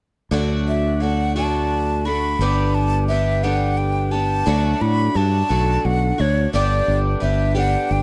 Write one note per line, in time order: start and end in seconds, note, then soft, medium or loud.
0.31 2.35 D2 medium
0.31 1.01 D3 medium
0.31 0.99 F#3 medium
0.31 1.00 A3 medium
0.31 1.02 D4 medium
0.31 1.02 F#4 medium
0.68 1.03 E5 medium
1.00 1.35 F#3 soft
1.00 1.36 A3 medium
1.00 1.35 D4 medium
1.00 1.34 F#4 medium
1.00 1.36 F#5 medium
1.36 2.06 D3 soft
1.36 2.06 F#3 soft
1.36 2.05 A3 medium
1.36 2.06 D4 medium
1.36 2.04 F#4 medium
1.36 2.07 A5 medium
2.05 2.41 A3 soft
2.05 2.40 D4 soft
2.05 2.39 F#4 soft
2.05 2.76 B5 medium
2.39 4.42 G1 medium
2.39 3.09 G2 medium
2.39 3.09 D3 medium
2.39 3.07 G3 medium
2.39 3.09 B3 medium
2.39 3.09 D4 medium
2.39 3.10 G4 medium
2.74 3.07 A5 medium
3.08 3.43 G3 medium
3.08 3.43 B3 medium
3.08 3.42 D4 medium
3.08 3.42 G4 medium
3.08 3.45 E5 medium
3.43 4.13 G2 soft
3.43 4.13 D3 soft
3.43 4.12 G3 medium
3.43 4.12 B3 medium
3.43 4.12 D4 medium
3.43 4.10 G4 medium
3.43 3.79 F#5 medium
3.77 4.13 G5 medium
4.11 4.46 G3 soft
4.11 4.47 B3 soft
4.11 4.46 D4 soft
4.11 4.46 G4 soft
4.11 4.83 A5 medium
4.46 4.73 D2 medium
4.46 5.15 D3 medium
4.46 5.13 F#3 medium
4.46 5.14 A3 medium
4.46 5.16 D4 medium
4.46 5.16 F#4 medium
4.81 5.08 A2 medium
4.81 5.18 B5 loud
5.14 5.42 G2 medium
5.14 5.49 F#3 medium
5.14 5.49 A3 medium
5.14 5.48 D4 medium
5.14 5.48 F#4 medium
5.14 5.87 A5 loud
5.49 5.77 B1 medium
5.49 6.19 D3 soft
5.49 6.19 F#3 medium
5.49 6.19 A3 medium
5.49 6.19 D4 medium
5.49 6.17 F#4 medium
5.85 6.11 B1 medium
5.85 6.22 F#5 medium
6.18 6.46 D2 medium
6.18 6.54 A3 soft
6.18 6.53 D4 soft
6.18 6.53 F#4 soft
6.18 6.52 C#5 medium
6.53 6.80 G1 medium
6.53 7.22 G2 medium
6.53 7.22 D3 medium
6.53 7.19 G3 medium
6.53 7.20 B3 medium
6.53 7.22 D4 medium
6.53 7.22 G4 medium
6.53 6.98 D5 medium
6.88 7.14 G1 medium
7.20 7.75 G1 medium
7.20 7.55 G3 medium
7.20 7.55 B3 medium
7.20 7.54 D4 medium
7.20 7.53 G4 medium
7.20 7.56 E5 medium
7.55 8.03 G2 medium
7.55 8.03 D3 medium
7.55 8.03 G3 medium
7.55 8.03 B3 medium
7.55 8.03 D4 medium
7.55 8.03 G4 medium
7.55 7.93 F#5 medium
7.91 8.03 G1 medium
7.91 8.03 G5 medium